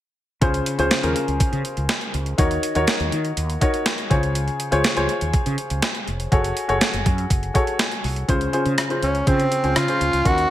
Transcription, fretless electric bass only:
0.42 C#2
0.79 C#2
1.03 D#2
1.28 C#2
1.52 C#3
1.77 C#2
2.14 C#2
2.38 D#2
2.75 D#2
3.00 D#2
3.12 D#3
3.37 D#2
4.11 C#2
4.72 C#2
4.97 C#2
5.21 D#2
5.46 C#3
5.71 C#2
6.08 F1
6.32 F#1
6.69 F#1
6.93 F#1
7.06 F#2
7.30 F#1
8.04 C2
8.29 C#2
8.66 C#3
9.02 C#2
9.27 C#3
9.64 C#2
9.76 C#3
10.01 C#2
10.13 C#2
10.26 D#2

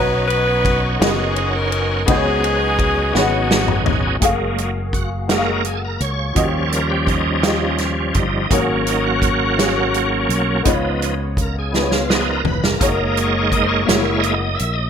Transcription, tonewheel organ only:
Already playing: F#3 B3 C#4 D#4 C#5
2.05 F#3 B3 C#4 D#4 G#4
4.24 F#3 G#3 A#3
4.93 F#4
5.31 F#3 G#3 A#3 A#4
5.65 G#4
5.77 A4
5.85 A#4
6.01 C#5
6.36 F3 G3 C#4
6.69 A4
6.74 A#4
6.90 G4
7.07 D#4
7.80 C#4
7.99 C#4
8.14 D#4
8.51 F#3 A#3 C#4
8.89 D#4
9.06 F#4
10.67 F3 B3 D#4
11.41 A#4
11.59 G#4
11.92 F4
12.10 F3 B3 D#4 G#4
12.28 A#4
12.47 B4
12.64 A#4
12.80 G#3 A#3 D#4
13.18 C#5
13.52 D#5
13.63 C5
13.68 C#5
13.85 G#3 A#3 E4
14.20 D#5
14.55 E5
14.73 D#5

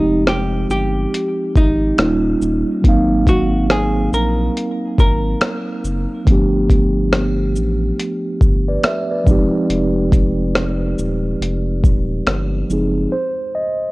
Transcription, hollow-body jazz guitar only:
Already playing: D#4
0.29 G4
0.71 G4
1.57 D#4
3.29 F#4
3.71 G#4
4.14 A#4
5.00 A#4

